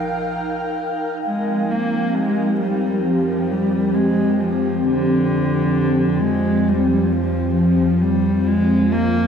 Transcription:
Already playing: synth drone A#1, cello F3, analog synth pad D#4 A#4 F5 G5
1.21 synth drone F2, analog synth pad F3, cello G#3
1.28 analog synth pad C4
1.70 cello A#3
2.03 analog synth pad G4
2.14 cello G#3
2.61 cello G3
3.05 cello F3
3.51 cello G3
3.94 cello G#3
4.40 cello F3
4.84 cello D3
6.20 cello G#3
6.68 cello G3
7.12 cello F3
7.55 cello F3
8.01 cello G3
8.13 analog synth pad F4
8.47 cello G#3
8.93 cello A#3

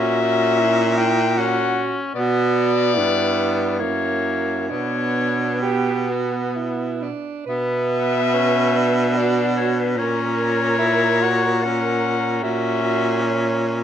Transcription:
Already playing: baritone saxophone A#2, tenor saxophone C#4, alto saxophone F#4, clarinet E5
0.22 tenor saxophone C#4
0.59 alto saxophone E4
0.98 alto saxophone E4, clarinet G5
1.37 tenor saxophone C#4, alto saxophone F#4, clarinet F#5
2.14 baritone saxophone B2, tenor saxophone B3, alto saxophone F#4, clarinet D5
2.94 baritone saxophone G2, tenor saxophone B3, alto saxophone E4
3.79 baritone saxophone F#2, tenor saxophone A#3, alto saxophone E4, clarinet C#5
4.69 baritone saxophone B2, tenor saxophone B3, alto saxophone D4, clarinet C#5
5.62 tenor saxophone B3, alto saxophone G4, clarinet B4
6.11 alto saxophone F#4
6.55 alto saxophone E4
7.02 alto saxophone D4
7.46 baritone saxophone B2, tenor saxophone B3, alto saxophone B4, clarinet E5
8.34 tenor saxophone C#4
8.76 tenor saxophone D4
9.15 alto saxophone F#4, clarinet D5
9.57 clarinet C#5
9.79 clarinet B4
9.96 baritone saxophone A#2, tenor saxophone C#4, alto saxophone A#4, clarinet C#5
10.78 tenor saxophone E4
11.22 tenor saxophone F#4
11.63 tenor saxophone C#4, alto saxophone A#4, clarinet F#5
12.43 baritone saxophone A#2, tenor saxophone C#4, alto saxophone F#4, clarinet E5
12.83 alto saxophone F#4
13.21 alto saxophone C#5

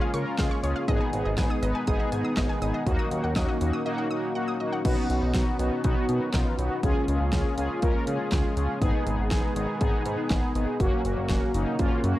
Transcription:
Already playing: analog synth pad C#3 G#3 A#3 F4, analog polysynth C#4 F4 G#4
0.01 synth arpeggio sound F5
0.14 analog synth bass C#3, analog polysynth C#4 F4 A#4, synth arpeggio sound C#6, closed hi-hat
0.39 analog synth bass C#2, analog polysynth C#4 F4 G#4, synth arpeggio sound F5, kick, snare, clap, closed hi-hat
0.51 synth arpeggio sound C#6
0.63 analog synth bass C#2, analog polysynth C#4 F4 G#4, synth arpeggio sound C#5, closed hi-hat
0.76 synth arpeggio sound F5
0.88 analog synth bass G#1, analog synth pad D#3 G#3 B3 G#4, analog polysynth B3 D#4 G#4, synth arpeggio sound D#5, kick, closed hi-hat
1.01 synth arpeggio sound G#5
1.13 analog synth bass G#1, analog polysynth B3 D#4 G#4, closed hi-hat
1.25 analog synth bass G#1, synth arpeggio sound D#5
1.38 analog synth bass G#1, analog polysynth B3 D#4 G#4, synth arpeggio sound G#5, kick, snare, closed hi-hat
1.50 synth arpeggio sound D#6
1.63 analog synth bass G#1, analog polysynth B3 D#4 B4, synth arpeggio sound D#5, closed hi-hat
1.75 synth arpeggio sound G#5
1.87 analog synth bass G#1, analog polysynth B3 D#4 G#4, synth arpeggio sound D#6, kick, closed hi-hat
2.00 synth arpeggio sound D#5
2.12 analog synth bass G#2, analog polysynth B3 D#4 G#4, synth arpeggio sound G#5, closed hi-hat
2.25 synth arpeggio sound D#6
2.37 analog synth bass G#1, analog polysynth B3 D#4 G#4, synth arpeggio sound D#5, kick, snare, clap, closed hi-hat
2.49 synth arpeggio sound G#5
2.62 analog synth bass G#1, analog polysynth B3 D#4 G#4, synth arpeggio sound D#6, closed hi-hat
2.74 synth arpeggio sound D#5
2.86 analog synth bass D#2, analog polysynth A#3 D#4 F#4, analog synth pad A#3 C#4 F#4, kick, closed hi-hat
2.99 synth arpeggio sound D#6
3.11 analog synth bass D#2, analog polysynth A#3 D#4 F#4, closed hi-hat
3.24 analog synth bass D#2, synth arpeggio sound F#5
3.36 analog synth bass D#2, analog polysynth A#3 D#4 F#4, synth arpeggio sound D#6, kick, snare, closed hi-hat
3.49 synth arpeggio sound D#5
3.61 analog synth bass D#2, analog polysynth A#3 D#4 F#4, closed hi-hat
3.73 synth arpeggio sound D#6
3.86 analog polysynth A#3 D#4 F#4, synth arpeggio sound D#5
3.98 synth arpeggio sound F#5
4.10 analog polysynth A#3 D#4 F#4, synth arpeggio sound D#6
4.35 analog polysynth A#3 D#4 F#4, synth arpeggio sound F#5
4.48 synth arpeggio sound D#6
4.60 analog polysynth A#3 D#4 F#4, synth arpeggio sound D#5
4.73 synth arpeggio sound F#5
4.85 analog synth bass B1, analog synth pad D#3 B3 C#4 F#4, analog polysynth B3 D#4 F#4, kick, closed hi-hat, crash
5.10 analog synth bass B1, analog polysynth B3 D#4 F#4, closed hi-hat
5.22 analog synth bass B1
5.34 analog synth bass B1, analog polysynth B3 D#4 F#4, kick, snare, closed hi-hat
5.59 analog synth bass B1, analog polysynth B3 D#4 F#4, closed hi-hat
5.84 analog synth bass B1, analog polysynth B3 D#4 F#4, kick, closed hi-hat
6.09 analog synth bass B2, analog polysynth B3 D#4 F#4, closed hi-hat
6.34 analog synth bass B1, analog polysynth B3 D#4 F4, kick, snare, clap, closed hi-hat
6.58 analog synth bass B1, analog polysynth B3 D#4 F#4, closed hi-hat
6.83 analog synth bass C#2, analog synth pad C#3 G#3 A#3 F4, analog polysynth C#4 F4 G#4, kick, closed hi-hat
7.08 analog synth bass C#2, analog polysynth C#4 F4 G#4, closed hi-hat
7.21 analog synth bass C#2
7.33 analog synth bass C#2, analog polysynth C#4 F4 G#4, kick, snare, closed hi-hat
7.57 analog synth bass C#2, analog polysynth C#4 F4 G#4, closed hi-hat
7.82 analog synth bass C#2, analog polysynth C#4 F4 A#4, kick, closed hi-hat
8.07 analog synth bass C#3, analog polysynth C#4 F4 G#4, closed hi-hat
8.32 analog synth bass C#2, analog polysynth C#4 F4 G#4, kick, snare, clap, closed hi-hat
8.57 analog synth bass C#2, analog polysynth C#4 F4 G#4, closed hi-hat
8.82 analog synth bass G#1, analog synth pad D#3 B3 G#4, analog polysynth B3 D#4 G#4, kick, closed hi-hat
9.06 analog synth bass G#1, analog polysynth B3 D#4 G#4, closed hi-hat
9.19 analog synth bass G#1
9.31 analog synth bass G#1, analog polysynth B3 D#4 G#4, kick, snare, closed hi-hat
9.56 analog synth bass G#1, analog polysynth B3 D#4 G#4, closed hi-hat
9.81 analog synth bass G#1, analog polysynth B3 D#4 G#4, kick, closed hi-hat
10.05 analog synth bass G#2, analog polysynth B3 D#4 G#4, closed hi-hat
10.30 analog synth bass G#1, analog polysynth B3 D#4 G#4, kick, snare, clap, closed hi-hat
10.55 analog synth bass G#1, analog polysynth B3 D#4 G#4, closed hi-hat
10.80 analog synth bass F#1, analog synth pad C#3 F#3 A#3 F#4, analog polysynth A#3 C#4 F#4, kick, closed hi-hat
11.05 analog synth bass F#1, analog polysynth A#3 C#4 F#4, closed hi-hat
11.17 analog synth bass F#1
11.29 analog synth bass F#1, analog polysynth A#3 C#4 F#4, kick, snare, closed hi-hat
11.54 analog synth bass F#1, analog polysynth A#3 C#4 D#4, closed hi-hat
11.79 analog synth bass F#1, analog polysynth A#3 C#4 F4, kick, closed hi-hat
12.04 analog synth bass F#2, analog polysynth A#3 C#4 F#4, closed hi-hat

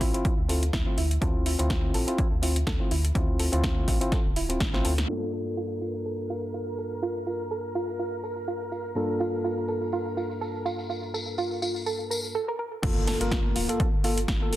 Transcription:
Already playing: tine electric piano C4 E4 F4
0.01 fm bass A1, synth arpeggio sound E4, kick, open hi-hat
0.14 tine electric piano C4 E4 F4, closed hi-hat
0.25 synth arpeggio sound E4, kick, closed hi-hat
0.38 fm bass D2
0.48 tine electric piano C4 E4 F4, synth arpeggio sound A4, open hi-hat
0.63 closed hi-hat
0.73 fm bass D2, synth arpeggio sound E4, kick, snare, closed hi-hat
0.86 tine electric piano C4 E4 F4
0.97 fm bass D2, synth arpeggio sound E4, open hi-hat
1.11 closed hi-hat
1.21 fm bass D2, tine electric piano C4 E4 F4, synth arpeggio sound A4, kick, closed hi-hat
1.46 synth arpeggio sound E4, open hi-hat
1.59 fm bass D2, tine electric piano C4 E4 F4, closed hi-hat
1.70 synth arpeggio sound E4, kick, snare, closed hi-hat
1.94 fm bass A1, synth arpeggio sound A4, open hi-hat
2.07 tine electric piano C4 E4 F4, closed hi-hat
2.18 synth arpeggio sound E4, kick, closed hi-hat
2.32 fm bass D2
2.42 tine electric piano C4 E4 F4, synth arpeggio sound E4, open hi-hat
2.56 closed hi-hat
2.67 fm bass D2, synth arpeggio sound A4, kick, snare, closed hi-hat
2.80 tine electric piano C4 E4 F4
2.91 fm bass D2, synth arpeggio sound E4, open hi-hat
3.05 closed hi-hat
3.15 fm bass D2, tine electric piano C4 E4 F4, synth arpeggio sound E4, kick, closed hi-hat
3.39 synth arpeggio sound A4, open hi-hat
3.52 fm bass D2, tine electric piano C4 E4 F4, closed hi-hat
3.64 synth arpeggio sound E4, kick, snare, closed hi-hat
3.88 fm bass A1, synth arpeggio sound E4, kick, open hi-hat
4.01 tine electric piano C4 E4 F4, closed hi-hat
4.12 synth arpeggio sound A4, kick, snare, closed hi-hat
4.26 fm bass D1
4.36 synth arpeggio sound E4, open hi-hat
4.49 tine electric piano C4 E4 F4, closed hi-hat
4.60 fm bass A1, synth arpeggio sound E4, kick, snare, closed hi-hat
4.73 tine electric piano C4 E4 F4, snare
4.85 fm bass D2, synth arpeggio sound A4, open hi-hat
4.98 snare, closed hi-hat
5.08 tine electric piano G2 A#3 D4 F4 A4, synth arpeggio sound F4, string machine A#4, crash
5.33 synth arpeggio sound A4, tambourine
5.47 tambourine
5.57 synth arpeggio sound F4, tambourine
5.70 tambourine
5.81 synth arpeggio sound F4, tambourine
5.95 tambourine
6.06 synth arpeggio sound A4, tambourine
6.20 tambourine
6.30 synth arpeggio sound F4, tambourine
6.43 tambourine
6.54 synth arpeggio sound F4, tambourine
6.67 tambourine
6.78 synth arpeggio sound A4, tambourine
6.92 tambourine
7.03 synth arpeggio sound F4, tambourine
7.16 tambourine
7.26 synth arpeggio sound F4, tambourine
7.40 tambourine
7.51 synth arpeggio sound A4, tambourine
7.65 tambourine
7.75 synth arpeggio sound F4, tambourine
7.88 tambourine
7.99 synth arpeggio sound F4, tambourine
8.13 tambourine
8.23 synth arpeggio sound A4, tambourine
8.37 tambourine
8.48 synth arpeggio sound F4, tambourine
8.61 tambourine
8.72 synth arpeggio sound F4, tambourine
8.86 tambourine
8.95 tine electric piano G2 A#3 D4 F4 A4, synth arpeggio sound A4, tambourine
9.10 tambourine
9.20 synth arpeggio sound F4, tambourine
9.34 tambourine
9.44 synth arpeggio sound F4, tambourine
9.58 tambourine
9.68 synth arpeggio sound A4, tambourine
9.82 tambourine
9.92 synth arpeggio sound F4, tambourine
10.06 tambourine
10.17 synth arpeggio sound F4, tambourine
10.31 tambourine
10.41 synth arpeggio sound A4, tambourine
10.55 tambourine
10.65 synth arpeggio sound F4, tambourine
10.79 tambourine
10.90 synth arpeggio sound F4, tambourine
11.03 tambourine
11.14 synth arpeggio sound A4, tambourine
11.28 tambourine
11.38 synth arpeggio sound F4, tambourine
11.51 tambourine
11.62 synth arpeggio sound F4, tambourine
11.76 tambourine
11.86 synth arpeggio sound A4, tambourine
12.00 tambourine
12.10 synth arpeggio sound A#4, tambourine
12.25 tambourine
12.35 synth arpeggio sound A4
12.48 synth arpeggio sound A#4
12.59 synth arpeggio sound A#4
12.82 fm bass G1, tine electric piano A#3 F4 A4, synth arpeggio sound F4, kick, closed hi-hat, crash, impact
13.07 synth arpeggio sound A4, snare, open hi-hat
13.20 fm bass G1, tine electric piano A#3 F4 A#4, closed hi-hat
13.32 synth arpeggio sound F4, kick, snare, closed hi-hat
13.56 fm bass D1, synth arpeggio sound F4, open hi-hat
13.69 tine electric piano A#3 F4 A4, closed hi-hat
13.80 synth arpeggio sound A4, kick, closed hi-hat
13.94 fm bass G1
14.04 tine electric piano A#3 F4 A4, synth arpeggio sound F4, open hi-hat
14.18 closed hi-hat
14.28 fm bass G1, synth arpeggio sound F4, kick, snare, closed hi-hat
14.41 tine electric piano A#3 F4 A4
14.52 fm bass G1, synth arpeggio sound A4, open hi-hat

